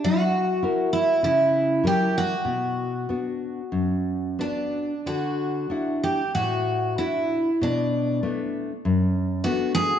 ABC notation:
X:1
M:4/4
L:1/8
Q:1/4=96
K:Bm
V:1 name="Twelve-string acoustic guitar"
F3 E E2 G F- | F6 D2 | F3 G F2 E2 | D2 z4 F ^G |]
V:2 name="Nylon-string guitar"
F,2 [EF^A]2 C,2 [F,EA]2 | B,,2 [B,DF]2 F,,2 [B,DF]2 | D,2 [DEf]2 A,,2 [DEF]2 | B,,2 [A,B,D]2 F,,2 [A,B,D]2 |]